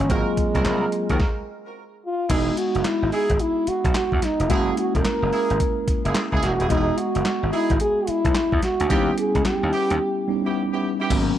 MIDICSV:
0, 0, Header, 1, 7, 480
1, 0, Start_track
1, 0, Tempo, 550459
1, 83, Time_signature, 4, 2, 24, 8
1, 9927, End_track
2, 0, Start_track
2, 0, Title_t, "French horn"
2, 0, Program_c, 0, 60
2, 0, Note_on_c, 0, 61, 97
2, 96, Note_on_c, 0, 56, 92
2, 109, Note_off_c, 0, 61, 0
2, 1529, Note_off_c, 0, 56, 0
2, 1781, Note_on_c, 0, 65, 86
2, 2019, Note_on_c, 0, 63, 78
2, 2033, Note_off_c, 0, 65, 0
2, 2255, Note_on_c, 0, 66, 81
2, 2268, Note_off_c, 0, 63, 0
2, 2496, Note_on_c, 0, 64, 86
2, 2509, Note_off_c, 0, 66, 0
2, 2724, Note_off_c, 0, 64, 0
2, 2729, Note_on_c, 0, 68, 92
2, 2972, Note_on_c, 0, 64, 91
2, 2985, Note_off_c, 0, 68, 0
2, 3213, Note_on_c, 0, 66, 99
2, 3226, Note_off_c, 0, 64, 0
2, 3448, Note_off_c, 0, 66, 0
2, 3455, Note_on_c, 0, 66, 96
2, 3697, Note_on_c, 0, 63, 96
2, 3710, Note_off_c, 0, 66, 0
2, 3932, Note_on_c, 0, 66, 100
2, 3945, Note_off_c, 0, 63, 0
2, 4167, Note_off_c, 0, 66, 0
2, 4172, Note_on_c, 0, 66, 98
2, 4310, Note_off_c, 0, 66, 0
2, 4324, Note_on_c, 0, 70, 94
2, 5338, Note_off_c, 0, 70, 0
2, 5611, Note_on_c, 0, 66, 102
2, 5853, Note_on_c, 0, 63, 95
2, 5866, Note_off_c, 0, 66, 0
2, 6083, Note_on_c, 0, 66, 101
2, 6096, Note_off_c, 0, 63, 0
2, 6563, Note_off_c, 0, 66, 0
2, 6568, Note_on_c, 0, 64, 95
2, 6789, Note_off_c, 0, 64, 0
2, 6811, Note_on_c, 0, 68, 109
2, 7049, Note_on_c, 0, 64, 108
2, 7062, Note_off_c, 0, 68, 0
2, 7523, Note_off_c, 0, 64, 0
2, 7528, Note_on_c, 0, 66, 102
2, 7770, Note_on_c, 0, 67, 97
2, 7783, Note_off_c, 0, 66, 0
2, 8006, Note_off_c, 0, 67, 0
2, 8014, Note_on_c, 0, 68, 96
2, 8232, Note_off_c, 0, 68, 0
2, 8247, Note_on_c, 0, 67, 102
2, 9170, Note_off_c, 0, 67, 0
2, 9927, End_track
3, 0, Start_track
3, 0, Title_t, "Horn section"
3, 0, Program_c, 1, 61
3, 80, Note_on_c, 1, 60, 86
3, 80, Note_on_c, 1, 65, 76
3, 82, Note_on_c, 1, 66, 82
3, 85, Note_on_c, 1, 70, 96
3, 270, Note_off_c, 1, 60, 0
3, 270, Note_off_c, 1, 65, 0
3, 271, Note_off_c, 1, 66, 0
3, 272, Note_off_c, 1, 70, 0
3, 471, Note_on_c, 1, 60, 72
3, 474, Note_on_c, 1, 65, 66
3, 475, Note_on_c, 1, 66, 63
3, 478, Note_on_c, 1, 70, 84
3, 549, Note_off_c, 1, 60, 0
3, 550, Note_off_c, 1, 65, 0
3, 552, Note_off_c, 1, 66, 0
3, 556, Note_off_c, 1, 70, 0
3, 559, Note_on_c, 1, 60, 74
3, 561, Note_on_c, 1, 65, 66
3, 563, Note_on_c, 1, 66, 64
3, 566, Note_on_c, 1, 70, 81
3, 750, Note_off_c, 1, 60, 0
3, 750, Note_off_c, 1, 65, 0
3, 751, Note_off_c, 1, 66, 0
3, 753, Note_off_c, 1, 70, 0
3, 954, Note_on_c, 1, 60, 63
3, 954, Note_on_c, 1, 65, 65
3, 957, Note_on_c, 1, 66, 65
3, 959, Note_on_c, 1, 70, 77
3, 1105, Note_off_c, 1, 60, 0
3, 1106, Note_off_c, 1, 65, 0
3, 1107, Note_off_c, 1, 66, 0
3, 1108, Note_off_c, 1, 70, 0
3, 1999, Note_on_c, 1, 63, 82
3, 2000, Note_on_c, 1, 64, 81
3, 2003, Note_on_c, 1, 68, 100
3, 2227, Note_off_c, 1, 63, 0
3, 2228, Note_off_c, 1, 64, 0
3, 2229, Note_off_c, 1, 68, 0
3, 2717, Note_on_c, 1, 63, 79
3, 2722, Note_on_c, 1, 64, 71
3, 2724, Note_on_c, 1, 68, 87
3, 2909, Note_off_c, 1, 63, 0
3, 2911, Note_off_c, 1, 64, 0
3, 2912, Note_off_c, 1, 68, 0
3, 3916, Note_on_c, 1, 58, 90
3, 3921, Note_on_c, 1, 64, 85
3, 3922, Note_on_c, 1, 68, 99
3, 4146, Note_off_c, 1, 58, 0
3, 4148, Note_off_c, 1, 64, 0
3, 4149, Note_off_c, 1, 68, 0
3, 4639, Note_on_c, 1, 58, 83
3, 4642, Note_on_c, 1, 64, 74
3, 4645, Note_on_c, 1, 68, 92
3, 4829, Note_off_c, 1, 58, 0
3, 4831, Note_off_c, 1, 64, 0
3, 4833, Note_off_c, 1, 68, 0
3, 5271, Note_on_c, 1, 58, 72
3, 5272, Note_on_c, 1, 64, 73
3, 5275, Note_on_c, 1, 68, 79
3, 5424, Note_off_c, 1, 58, 0
3, 5424, Note_off_c, 1, 64, 0
3, 5426, Note_off_c, 1, 68, 0
3, 5511, Note_on_c, 1, 58, 77
3, 5514, Note_on_c, 1, 64, 72
3, 5516, Note_on_c, 1, 68, 94
3, 5664, Note_off_c, 1, 58, 0
3, 5665, Note_off_c, 1, 64, 0
3, 5667, Note_off_c, 1, 68, 0
3, 5752, Note_on_c, 1, 58, 77
3, 5754, Note_on_c, 1, 64, 75
3, 5755, Note_on_c, 1, 68, 83
3, 5829, Note_off_c, 1, 64, 0
3, 5831, Note_off_c, 1, 68, 0
3, 5836, Note_on_c, 1, 63, 93
3, 5839, Note_on_c, 1, 64, 82
3, 5842, Note_on_c, 1, 68, 107
3, 5904, Note_off_c, 1, 58, 0
3, 6065, Note_off_c, 1, 63, 0
3, 6067, Note_off_c, 1, 64, 0
3, 6068, Note_off_c, 1, 68, 0
3, 6557, Note_on_c, 1, 63, 86
3, 6561, Note_on_c, 1, 64, 75
3, 6563, Note_on_c, 1, 68, 90
3, 6748, Note_off_c, 1, 63, 0
3, 6750, Note_off_c, 1, 64, 0
3, 6751, Note_off_c, 1, 68, 0
3, 7756, Note_on_c, 1, 59, 92
3, 7757, Note_on_c, 1, 61, 82
3, 7758, Note_on_c, 1, 64, 77
3, 7760, Note_on_c, 1, 67, 100
3, 7985, Note_off_c, 1, 59, 0
3, 7986, Note_off_c, 1, 61, 0
3, 7987, Note_off_c, 1, 64, 0
3, 7987, Note_off_c, 1, 67, 0
3, 8475, Note_on_c, 1, 59, 84
3, 8479, Note_on_c, 1, 61, 77
3, 8480, Note_on_c, 1, 64, 73
3, 8481, Note_on_c, 1, 67, 85
3, 8668, Note_off_c, 1, 59, 0
3, 8670, Note_off_c, 1, 61, 0
3, 8670, Note_off_c, 1, 64, 0
3, 8671, Note_off_c, 1, 67, 0
3, 9110, Note_on_c, 1, 59, 78
3, 9112, Note_on_c, 1, 61, 67
3, 9113, Note_on_c, 1, 64, 73
3, 9115, Note_on_c, 1, 67, 86
3, 9263, Note_off_c, 1, 59, 0
3, 9264, Note_off_c, 1, 61, 0
3, 9265, Note_off_c, 1, 64, 0
3, 9266, Note_off_c, 1, 67, 0
3, 9351, Note_on_c, 1, 59, 79
3, 9351, Note_on_c, 1, 61, 73
3, 9354, Note_on_c, 1, 67, 87
3, 9355, Note_on_c, 1, 64, 74
3, 9504, Note_off_c, 1, 59, 0
3, 9504, Note_off_c, 1, 61, 0
3, 9505, Note_off_c, 1, 67, 0
3, 9506, Note_off_c, 1, 64, 0
3, 9591, Note_on_c, 1, 59, 70
3, 9594, Note_on_c, 1, 61, 67
3, 9595, Note_on_c, 1, 64, 71
3, 9597, Note_on_c, 1, 67, 93
3, 9666, Note_off_c, 1, 59, 0
3, 9670, Note_off_c, 1, 61, 0
3, 9677, Note_on_c, 1, 59, 89
3, 9680, Note_on_c, 1, 61, 83
3, 9682, Note_on_c, 1, 66, 85
3, 9683, Note_on_c, 1, 70, 97
3, 9746, Note_off_c, 1, 64, 0
3, 9747, Note_off_c, 1, 67, 0
3, 9906, Note_off_c, 1, 59, 0
3, 9907, Note_off_c, 1, 61, 0
3, 9908, Note_off_c, 1, 66, 0
3, 9909, Note_off_c, 1, 70, 0
3, 9927, End_track
4, 0, Start_track
4, 0, Title_t, "Tine electric piano"
4, 0, Program_c, 2, 4
4, 0, Control_c, 2, 64, 127
4, 80, Note_on_c, 2, 54, 59
4, 87, Note_on_c, 2, 58, 59
4, 94, Control_c, 2, 64, 0
4, 94, Note_on_c, 2, 60, 57
4, 99, Note_on_c, 2, 65, 67
4, 262, Control_c, 2, 64, 127
4, 1022, Note_off_c, 2, 54, 0
4, 1026, Note_off_c, 2, 58, 0
4, 1029, Note_off_c, 2, 60, 0
4, 1032, Note_off_c, 2, 65, 0
4, 1052, Control_c, 2, 64, 0
4, 1999, Note_on_c, 2, 56, 66
4, 2006, Note_on_c, 2, 59, 59
4, 2014, Note_on_c, 2, 63, 58
4, 2020, Note_on_c, 2, 66, 65
4, 2187, Control_c, 2, 64, 127
4, 3886, Note_off_c, 2, 56, 0
4, 3890, Note_off_c, 2, 59, 0
4, 3894, Note_off_c, 2, 63, 0
4, 3897, Note_off_c, 2, 66, 0
4, 3913, Note_on_c, 2, 56, 62
4, 3922, Note_on_c, 2, 58, 59
4, 3930, Note_on_c, 2, 61, 62
4, 3935, Note_on_c, 2, 64, 70
4, 3936, Control_c, 2, 64, 0
4, 4077, Control_c, 2, 64, 127
4, 5803, Note_off_c, 2, 56, 0
4, 5808, Note_off_c, 2, 58, 0
4, 5812, Note_off_c, 2, 61, 0
4, 5814, Note_off_c, 2, 64, 0
4, 5839, Note_on_c, 2, 56, 60
4, 5847, Note_on_c, 2, 59, 59
4, 5853, Control_c, 2, 64, 0
4, 5854, Note_on_c, 2, 75, 59
4, 5861, Note_on_c, 2, 66, 73
4, 6031, Control_c, 2, 64, 127
4, 7726, Note_off_c, 2, 56, 0
4, 7730, Note_off_c, 2, 59, 0
4, 7734, Note_off_c, 2, 75, 0
4, 7737, Note_off_c, 2, 66, 0
4, 7757, Note_on_c, 2, 55, 66
4, 7763, Note_on_c, 2, 59, 60
4, 7770, Note_on_c, 2, 61, 64
4, 7775, Control_c, 2, 64, 0
4, 7777, Note_on_c, 2, 64, 76
4, 7905, Control_c, 2, 64, 127
4, 8936, Note_off_c, 2, 55, 0
4, 8939, Note_off_c, 2, 59, 0
4, 8942, Note_off_c, 2, 61, 0
4, 8946, Note_off_c, 2, 64, 0
4, 8959, Note_on_c, 2, 55, 65
4, 8962, Note_on_c, 2, 59, 60
4, 8969, Note_on_c, 2, 61, 58
4, 8970, Note_on_c, 2, 63, 68
4, 9681, Note_off_c, 2, 55, 0
4, 9681, Note_on_c, 2, 54, 75
4, 9682, Note_off_c, 2, 59, 0
4, 9686, Note_off_c, 2, 61, 0
4, 9686, Note_off_c, 2, 63, 0
4, 9686, Note_on_c, 2, 58, 73
4, 9693, Note_on_c, 2, 59, 74
4, 9695, Control_c, 2, 64, 0
4, 9699, Note_on_c, 2, 61, 88
4, 9863, Control_c, 2, 64, 127
4, 9927, Note_off_c, 2, 54, 0
4, 9927, Note_off_c, 2, 58, 0
4, 9927, Note_off_c, 2, 59, 0
4, 9927, Note_off_c, 2, 61, 0
4, 9927, End_track
5, 0, Start_track
5, 0, Title_t, "Slap bass"
5, 0, Program_c, 3, 36
5, 85, Note_on_c, 3, 32, 100
5, 193, Note_off_c, 3, 32, 0
5, 479, Note_on_c, 3, 36, 85
5, 540, Note_off_c, 3, 36, 0
5, 568, Note_on_c, 3, 36, 93
5, 738, Note_off_c, 3, 36, 0
5, 959, Note_on_c, 3, 39, 77
5, 1020, Note_off_c, 3, 39, 0
5, 2002, Note_on_c, 3, 28, 95
5, 2175, Note_off_c, 3, 28, 0
5, 2399, Note_on_c, 3, 30, 86
5, 2461, Note_off_c, 3, 30, 0
5, 2637, Note_on_c, 3, 32, 90
5, 2699, Note_off_c, 3, 32, 0
5, 2877, Note_on_c, 3, 32, 88
5, 2939, Note_off_c, 3, 32, 0
5, 3354, Note_on_c, 3, 35, 89
5, 3417, Note_off_c, 3, 35, 0
5, 3595, Note_on_c, 3, 40, 84
5, 3658, Note_off_c, 3, 40, 0
5, 3834, Note_on_c, 3, 29, 91
5, 3897, Note_off_c, 3, 29, 0
5, 3924, Note_on_c, 3, 30, 105
5, 4096, Note_off_c, 3, 30, 0
5, 4317, Note_on_c, 3, 28, 81
5, 4379, Note_off_c, 3, 28, 0
5, 4555, Note_on_c, 3, 30, 98
5, 4618, Note_off_c, 3, 30, 0
5, 4798, Note_on_c, 3, 32, 92
5, 4860, Note_off_c, 3, 32, 0
5, 5277, Note_on_c, 3, 30, 83
5, 5339, Note_off_c, 3, 30, 0
5, 5516, Note_on_c, 3, 37, 76
5, 5579, Note_off_c, 3, 37, 0
5, 5603, Note_on_c, 3, 28, 83
5, 5712, Note_off_c, 3, 28, 0
5, 5757, Note_on_c, 3, 27, 92
5, 5819, Note_off_c, 3, 27, 0
5, 5845, Note_on_c, 3, 28, 104
5, 6016, Note_off_c, 3, 28, 0
5, 6239, Note_on_c, 3, 30, 93
5, 6301, Note_off_c, 3, 30, 0
5, 6478, Note_on_c, 3, 32, 93
5, 6540, Note_off_c, 3, 32, 0
5, 6719, Note_on_c, 3, 32, 81
5, 6780, Note_off_c, 3, 32, 0
5, 7193, Note_on_c, 3, 35, 86
5, 7256, Note_off_c, 3, 35, 0
5, 7433, Note_on_c, 3, 40, 102
5, 7497, Note_off_c, 3, 40, 0
5, 7677, Note_on_c, 3, 38, 89
5, 7739, Note_off_c, 3, 38, 0
5, 7763, Note_on_c, 3, 39, 105
5, 7935, Note_off_c, 3, 39, 0
5, 8155, Note_on_c, 3, 37, 86
5, 8218, Note_off_c, 3, 37, 0
5, 8399, Note_on_c, 3, 39, 100
5, 8460, Note_off_c, 3, 39, 0
5, 8638, Note_on_c, 3, 39, 88
5, 8700, Note_off_c, 3, 39, 0
5, 9683, Note_on_c, 3, 32, 107
5, 9855, Note_off_c, 3, 32, 0
5, 9927, End_track
6, 0, Start_track
6, 0, Title_t, "Muted slap bass strokes"
6, 3205, Note_on_c, 9, 29, 50
6, 3292, Note_off_c, 9, 29, 0
6, 5126, Note_on_c, 9, 29, 48
6, 5214, Note_off_c, 9, 29, 0
6, 7047, Note_on_c, 9, 29, 50
6, 7134, Note_off_c, 9, 29, 0
6, 9927, End_track
7, 0, Start_track
7, 0, Title_t, "Drums"
7, 84, Note_on_c, 9, 36, 116
7, 86, Note_on_c, 9, 42, 86
7, 171, Note_off_c, 9, 36, 0
7, 173, Note_off_c, 9, 42, 0
7, 325, Note_on_c, 9, 36, 91
7, 325, Note_on_c, 9, 42, 70
7, 412, Note_off_c, 9, 36, 0
7, 412, Note_off_c, 9, 42, 0
7, 477, Note_on_c, 9, 36, 93
7, 479, Note_on_c, 9, 42, 48
7, 564, Note_off_c, 9, 36, 0
7, 565, Note_off_c, 9, 42, 0
7, 565, Note_on_c, 9, 38, 98
7, 565, Note_on_c, 9, 42, 60
7, 568, Note_on_c, 9, 39, 77
7, 652, Note_off_c, 9, 38, 0
7, 652, Note_off_c, 9, 42, 0
7, 655, Note_off_c, 9, 39, 0
7, 804, Note_on_c, 9, 42, 52
7, 891, Note_off_c, 9, 42, 0
7, 954, Note_on_c, 9, 42, 49
7, 957, Note_on_c, 9, 36, 88
7, 1042, Note_off_c, 9, 42, 0
7, 1043, Note_off_c, 9, 36, 0
7, 1043, Note_on_c, 9, 36, 108
7, 1043, Note_on_c, 9, 38, 87
7, 1130, Note_off_c, 9, 36, 0
7, 1130, Note_off_c, 9, 38, 0
7, 2002, Note_on_c, 9, 36, 110
7, 2002, Note_on_c, 9, 42, 84
7, 2002, Note_on_c, 9, 49, 97
7, 2089, Note_off_c, 9, 36, 0
7, 2090, Note_off_c, 9, 42, 0
7, 2090, Note_off_c, 9, 49, 0
7, 2243, Note_on_c, 9, 42, 71
7, 2330, Note_off_c, 9, 42, 0
7, 2397, Note_on_c, 9, 42, 49
7, 2481, Note_off_c, 9, 42, 0
7, 2481, Note_on_c, 9, 38, 101
7, 2481, Note_on_c, 9, 42, 72
7, 2484, Note_on_c, 9, 39, 80
7, 2568, Note_off_c, 9, 38, 0
7, 2568, Note_off_c, 9, 42, 0
7, 2572, Note_off_c, 9, 39, 0
7, 2723, Note_on_c, 9, 46, 58
7, 2810, Note_off_c, 9, 46, 0
7, 2874, Note_on_c, 9, 42, 52
7, 2876, Note_on_c, 9, 36, 95
7, 2960, Note_off_c, 9, 42, 0
7, 2960, Note_on_c, 9, 42, 75
7, 2963, Note_off_c, 9, 36, 0
7, 3047, Note_off_c, 9, 42, 0
7, 3201, Note_on_c, 9, 42, 77
7, 3288, Note_off_c, 9, 42, 0
7, 3353, Note_on_c, 9, 36, 101
7, 3356, Note_on_c, 9, 42, 52
7, 3440, Note_off_c, 9, 36, 0
7, 3440, Note_on_c, 9, 38, 110
7, 3441, Note_off_c, 9, 42, 0
7, 3441, Note_on_c, 9, 42, 80
7, 3443, Note_on_c, 9, 39, 97
7, 3527, Note_off_c, 9, 38, 0
7, 3528, Note_off_c, 9, 42, 0
7, 3530, Note_off_c, 9, 39, 0
7, 3594, Note_on_c, 9, 36, 96
7, 3681, Note_off_c, 9, 36, 0
7, 3682, Note_on_c, 9, 42, 77
7, 3684, Note_on_c, 9, 38, 72
7, 3769, Note_off_c, 9, 42, 0
7, 3772, Note_off_c, 9, 38, 0
7, 3835, Note_on_c, 9, 42, 60
7, 3922, Note_off_c, 9, 42, 0
7, 3922, Note_on_c, 9, 42, 83
7, 3923, Note_on_c, 9, 36, 121
7, 4009, Note_off_c, 9, 42, 0
7, 4010, Note_off_c, 9, 36, 0
7, 4162, Note_on_c, 9, 42, 71
7, 4249, Note_off_c, 9, 42, 0
7, 4315, Note_on_c, 9, 36, 98
7, 4316, Note_on_c, 9, 42, 57
7, 4401, Note_off_c, 9, 42, 0
7, 4401, Note_on_c, 9, 38, 104
7, 4401, Note_on_c, 9, 42, 68
7, 4402, Note_off_c, 9, 36, 0
7, 4404, Note_on_c, 9, 39, 84
7, 4488, Note_off_c, 9, 38, 0
7, 4488, Note_off_c, 9, 42, 0
7, 4491, Note_off_c, 9, 39, 0
7, 4644, Note_on_c, 9, 46, 56
7, 4731, Note_off_c, 9, 46, 0
7, 4798, Note_on_c, 9, 42, 51
7, 4882, Note_on_c, 9, 36, 85
7, 4883, Note_off_c, 9, 42, 0
7, 4883, Note_on_c, 9, 42, 78
7, 4970, Note_off_c, 9, 36, 0
7, 4970, Note_off_c, 9, 42, 0
7, 5124, Note_on_c, 9, 36, 101
7, 5124, Note_on_c, 9, 42, 83
7, 5211, Note_off_c, 9, 36, 0
7, 5211, Note_off_c, 9, 42, 0
7, 5278, Note_on_c, 9, 42, 51
7, 5359, Note_on_c, 9, 38, 111
7, 5361, Note_off_c, 9, 42, 0
7, 5361, Note_on_c, 9, 42, 81
7, 5362, Note_on_c, 9, 39, 98
7, 5446, Note_off_c, 9, 38, 0
7, 5448, Note_off_c, 9, 42, 0
7, 5450, Note_off_c, 9, 39, 0
7, 5514, Note_on_c, 9, 36, 93
7, 5601, Note_off_c, 9, 36, 0
7, 5604, Note_on_c, 9, 42, 72
7, 5606, Note_on_c, 9, 38, 73
7, 5691, Note_off_c, 9, 42, 0
7, 5693, Note_off_c, 9, 38, 0
7, 5755, Note_on_c, 9, 42, 57
7, 5842, Note_off_c, 9, 42, 0
7, 5843, Note_on_c, 9, 36, 121
7, 5843, Note_on_c, 9, 42, 83
7, 5930, Note_off_c, 9, 36, 0
7, 5930, Note_off_c, 9, 42, 0
7, 6084, Note_on_c, 9, 42, 68
7, 6171, Note_off_c, 9, 42, 0
7, 6235, Note_on_c, 9, 42, 55
7, 6322, Note_on_c, 9, 38, 105
7, 6323, Note_off_c, 9, 42, 0
7, 6323, Note_on_c, 9, 42, 64
7, 6326, Note_on_c, 9, 39, 84
7, 6410, Note_off_c, 9, 38, 0
7, 6410, Note_off_c, 9, 42, 0
7, 6413, Note_off_c, 9, 39, 0
7, 6566, Note_on_c, 9, 46, 55
7, 6653, Note_off_c, 9, 46, 0
7, 6713, Note_on_c, 9, 42, 51
7, 6716, Note_on_c, 9, 36, 96
7, 6800, Note_off_c, 9, 42, 0
7, 6800, Note_on_c, 9, 42, 77
7, 6803, Note_off_c, 9, 36, 0
7, 6887, Note_off_c, 9, 42, 0
7, 7040, Note_on_c, 9, 42, 79
7, 7127, Note_off_c, 9, 42, 0
7, 7191, Note_on_c, 9, 36, 102
7, 7194, Note_on_c, 9, 42, 52
7, 7278, Note_off_c, 9, 36, 0
7, 7278, Note_on_c, 9, 38, 105
7, 7280, Note_off_c, 9, 42, 0
7, 7280, Note_on_c, 9, 42, 79
7, 7281, Note_on_c, 9, 39, 91
7, 7365, Note_off_c, 9, 38, 0
7, 7367, Note_off_c, 9, 42, 0
7, 7368, Note_off_c, 9, 39, 0
7, 7432, Note_on_c, 9, 36, 96
7, 7520, Note_off_c, 9, 36, 0
7, 7521, Note_on_c, 9, 42, 75
7, 7523, Note_on_c, 9, 38, 76
7, 7608, Note_off_c, 9, 42, 0
7, 7610, Note_off_c, 9, 38, 0
7, 7673, Note_on_c, 9, 42, 59
7, 7760, Note_off_c, 9, 42, 0
7, 7761, Note_on_c, 9, 36, 118
7, 7761, Note_on_c, 9, 42, 90
7, 7848, Note_off_c, 9, 36, 0
7, 7848, Note_off_c, 9, 42, 0
7, 8002, Note_on_c, 9, 42, 74
7, 8089, Note_off_c, 9, 42, 0
7, 8153, Note_on_c, 9, 36, 99
7, 8154, Note_on_c, 9, 42, 54
7, 8240, Note_off_c, 9, 42, 0
7, 8240, Note_on_c, 9, 38, 106
7, 8240, Note_on_c, 9, 42, 70
7, 8241, Note_off_c, 9, 36, 0
7, 8243, Note_on_c, 9, 39, 77
7, 8327, Note_off_c, 9, 38, 0
7, 8327, Note_off_c, 9, 42, 0
7, 8330, Note_off_c, 9, 39, 0
7, 8483, Note_on_c, 9, 46, 58
7, 8570, Note_off_c, 9, 46, 0
7, 8636, Note_on_c, 9, 42, 53
7, 8723, Note_off_c, 9, 42, 0
7, 9681, Note_on_c, 9, 36, 127
7, 9683, Note_on_c, 9, 42, 88
7, 9683, Note_on_c, 9, 49, 112
7, 9683, Note_on_c, 9, 54, 77
7, 9769, Note_off_c, 9, 36, 0
7, 9770, Note_off_c, 9, 42, 0
7, 9770, Note_off_c, 9, 49, 0
7, 9770, Note_off_c, 9, 54, 0
7, 9927, End_track
0, 0, End_of_file